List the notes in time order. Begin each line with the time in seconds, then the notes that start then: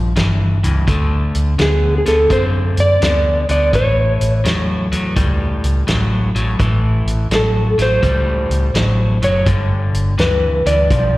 Already playing: A#1 G2 F3 D5
0.16 G1 G2 E3, snare, closed hi-hat
0.64 C#2 G2 E3, closed hi-hat
0.87 D2 D3 A3, kick, closed hi-hat
1.35 D2, closed hi-hat
1.59 D2 D3 B3 G#4, snare, closed hi-hat
1.98 G#4
2.06 D2 D3 B3 A4, snare, closed hi-hat
2.30 F#2 D3 C4 C5, kick, closed hi-hat
2.77 F#2 D5, closed hi-hat
3.01 D2 D3 B3, snare, closed hi-hat
3.49 D2 D3 B3 D5, closed hi-hat
3.73 A1 A2 E3 C#5, kick, closed hi-hat
4.21 A1, closed hi-hat
4.44 E2 A2 F#3, snare, closed hi-hat
4.92 E2 A2 F#3, closed hi-hat
5.11 B4
5.16 C#2 A2 G3, kick, closed hi-hat
5.64 C#2, closed hi-hat
5.87 A1 A2 F#3, snare, closed hi-hat
6.35 A1 A2 F#3, closed hi-hat
6.59 A1 A2 E3, kick, closed hi-hat
7.06 A1, closed hi-hat
7.30 A1 A2 F#3, snare, closed hi-hat
7.35 A4
7.77 A1 A2 F#3, snare, closed hi-hat
7.82 C5
8.02 C#2 A2 G3, kick, closed hi-hat
8.49 C#2, closed hi-hat
8.73 A1 A2 F#3, snare, closed hi-hat
9.21 F#1 A2 F#3 C#5, closed hi-hat
9.46 G1 G2 D3, kick, closed hi-hat
9.93 G1, closed hi-hat
10.18 D2 G2 E3 B4, snare, closed hi-hat
10.65 D2 G2 E3 D5, closed hi-hat
10.90 B1 G2 F3, kick, closed hi-hat